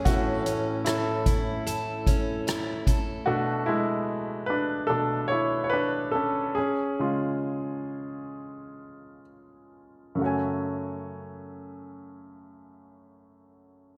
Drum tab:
HH |xxxxxxxx|--------|--------|--------|
SD |--r---r-|--------|--------|--------|
BD |o--o-o-o|--------|--------|--------|